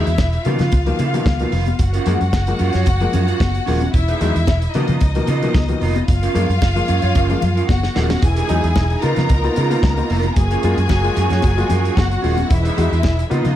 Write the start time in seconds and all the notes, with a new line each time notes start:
Already playing: E4 E5
0.06 E2 F#3 G#3, muted clean electric guitar stroke, closed hi-hat
0.18 E1, muted clean electric guitar stroke, kick, snare, high conga
0.33 muted clean electric guitar stroke, closed hi-hat
0.45 B2 C#3 D#3 F3 A#3 B3 F4 A#4 F5, closed hi-hat
0.59 C#3 B3 F4 B4, snare, closed hi-hat, low conga
0.72 C#2, muted clean electric guitar stroke, kick, closed hi-hat, muted conga
0.86 B2 D#3 F3 A#3, muted clean electric guitar stroke, closed hi-hat
0.99 C#3 B3 F4 A#4, closed hi-hat, muted conga
1.13 B2 D#3 F3 A#3 B3 F4 A#4, closed hi-hat
1.26 C#2, muted clean electric guitar stroke, kick, snare, high conga
1.40 B2 D#3 F3 A#3 B3 F4 A#4, closed hi-hat
1.52 F1 F3 A#3 B3 F4 A#4, open hi-hat
1.66 muted clean electric guitar stroke, closed hi-hat, high conga
1.79 F#1 F#4 F#5, muted clean electric guitar stroke, kick, closed hi-hat, muted conga
1.93 C#4 F4 A#4, closed hi-hat
2.06 F#2 F3 G#3 A#3 C#4 F4 A#4, closed hi-hat
2.20 F#2 G#3 A#3, muted clean electric guitar stroke, closed hi-hat
2.33 F#1, muted clean electric guitar stroke, kick, snare, high conga
2.47 F3 G#3 A#3, muted clean electric guitar stroke, closed hi-hat
2.59 F#2 G#3 A#3 C#4 F4 A#4, closed hi-hat
2.73 F#2 C#4 F4 C#5, snare, closed hi-hat, low conga
2.86 F#1, muted clean electric guitar stroke, kick, closed hi-hat, muted conga
3.00 F3 G#3 A#3, muted clean electric guitar stroke, closed hi-hat
3.13 F#2 G#3 A#3 C#4 F4 A#4, closed hi-hat, muted conga, low conga
3.27 C#4 F4 A#4, closed hi-hat
3.40 F#1, muted clean electric guitar stroke, kick, snare, high conga
3.54 muted clean electric guitar stroke, closed hi-hat
3.66 D#1 F3 G#3 A#3 C#4 F4 A#4, open hi-hat
3.81 G#3 A#3, muted clean electric guitar stroke, closed hi-hat, high conga
3.94 E1 E4 E5, muted clean electric guitar stroke, kick, closed hi-hat
4.08 D#4 G#4 B4, closed hi-hat
4.21 E2 D#3 F#3 G#3 D#4 G#4 B4, closed hi-hat
4.35 E2 F#3 G#3, muted clean electric guitar stroke, closed hi-hat
4.47 E1, muted clean electric guitar stroke, kick, snare, high conga
4.62 muted clean electric guitar stroke, closed hi-hat
4.74 B2 C#3 D#3 F3 A#3 B3 D#4 F4 A#4 D#5, closed hi-hat
4.88 C#3 B3 F4 B4, closed hi-hat, low conga
5.00 C#2, muted clean electric guitar stroke, kick, closed hi-hat, muted conga
5.15 B2 D#3 F3 A#3, muted clean electric guitar stroke, closed hi-hat
5.27 C#3 B3 F4 A#4, closed hi-hat, muted conga
5.42 B2 D#3 F3 A#3 B3 F4 A#4, closed hi-hat
5.54 C#2, muted clean electric guitar stroke, kick, snare, high conga
5.69 B2 D#3 F3 A#3, muted clean electric guitar stroke, closed hi-hat
5.81 F1 F3 A#3 B3 F4 A#4, open hi-hat
5.95 muted clean electric guitar stroke, closed hi-hat, high conga
6.08 F#1 F4 F5, muted clean electric guitar stroke, kick, closed hi-hat
6.22 C#4 F4 A#4, closed hi-hat
6.34 F#2 F3 G#3 A#3 C#4 F4 A#4, closed hi-hat
6.49 F#2 G#3 A#3, muted clean electric guitar stroke, closed hi-hat
6.62 F#1, muted clean electric guitar stroke, kick, snare, high conga
6.76 F3 G#3 A#3, muted clean electric guitar stroke, closed hi-hat
6.88 F#2 G#3 A#3 C#4 F4 A#4, closed hi-hat
7.02 F#2 C#4 F4 C#5, closed hi-hat, low conga
7.15 F#1 C#4 F4 A#4, kick, closed hi-hat, muted conga
7.29 F3 G#3 A#3, muted clean electric guitar stroke, closed hi-hat
7.42 F#2 G#3 A#3, muted clean electric guitar stroke, closed hi-hat, muted conga, low conga
7.55 C#4 F4 A#4, closed hi-hat
7.69 F#1 F#4 F#5, muted clean electric guitar stroke, kick, snare, high conga
7.83 muted clean electric guitar stroke, snare
7.95 D#1 F3 G#3 A#3 C#4 F4 A#4, snare
8.10 G#3 A#3, muted clean electric guitar stroke, snare, high conga
8.22 E1 E3 G#3 D#4 E4 G#4 G#5, muted clean electric guitar stroke, kick, closed hi-hat, muted conga
8.36 D#4 G#4 B4, closed hi-hat
8.49 E2 F#3 G#3 D#4 G#4 B4, closed hi-hat
8.63 E2 G#3 D#4, muted clean electric guitar stroke, closed hi-hat
8.76 E1, muted clean electric guitar stroke, kick, snare, high conga
8.90 muted clean electric guitar stroke, closed hi-hat
9.02 C#3 A#3 B3 D#4 F4 A#4 A#5, closed hi-hat
9.16 C#3 B3 F4 B4, snare, closed hi-hat, low conga
9.29 C#2, muted clean electric guitar stroke, kick, closed hi-hat, muted conga
9.44 A#3 B3 D#4 F4, muted clean electric guitar stroke, closed hi-hat
9.56 C#3 G#3 B3 F4 A#4, closed hi-hat, muted conga
9.70 A#3 B3 D#4 F4 A#4, closed hi-hat
9.83 C#2 C#3 G#3, muted clean electric guitar stroke, kick, snare, high conga
9.97 A#3 B3 D#4 F4, muted clean electric guitar stroke, closed hi-hat
10.10 F1 B3 D#4 F4 A#4, open hi-hat
10.23 muted clean electric guitar stroke, closed hi-hat, high conga
10.36 F#1 F#3 F#4 G#4 G#5, muted clean electric guitar stroke, kick, closed hi-hat, muted conga
10.51 C#4 F4 A#4, closed hi-hat
10.63 F#2 G#3 A#3 C#4 F4 A#4, closed hi-hat
10.77 F#2 A#3 F4, muted clean electric guitar stroke, closed hi-hat
10.89 F#1 F#3, muted clean electric guitar stroke, kick, snare, high conga
11.04 G#3 A#3 F4, muted clean electric guitar stroke, closed hi-hat
11.17 F#2 A#3 C#4 F4 A#4, closed hi-hat
11.30 F#2 C#4 F4 C#5, snare, closed hi-hat, low conga
11.42 F#1 F#3, muted clean electric guitar stroke, kick, closed hi-hat, muted conga
11.57 G#3 A#3 F4, muted clean electric guitar stroke, closed hi-hat
11.69 F#2 A#3 C#4 F4 A#4, closed hi-hat, muted conga, low conga
11.84 C#4 F4 A#4, closed hi-hat
11.96 F#1 F#3 F#4 F#5, muted clean electric guitar stroke, kick, snare, high conga
12.10 muted clean electric guitar stroke, closed hi-hat
12.22 D#1 G#3 A#3 C#4 F4 A#4, open hi-hat
12.37 A#3 F4, muted clean electric guitar stroke, closed hi-hat, high conga
12.49 E1 E3 G#3 E4 E5, muted clean electric guitar stroke, kick, closed hi-hat, muted conga
12.63 D#4 G#4 B4, closed hi-hat
12.77 E2 G#3 D#4 F#4 G#4 B4, closed hi-hat
12.91 E2 D#4 F#4, muted clean electric guitar stroke, closed hi-hat
13.03 E1, muted clean electric guitar stroke, kick, snare, high conga
13.18 muted clean electric guitar stroke, closed hi-hat
13.30 C#3 D#3 A#3 B3 D#4 F4 A#4 D#5, closed hi-hat
13.44 C#3 B3 F4 B4, closed hi-hat, low conga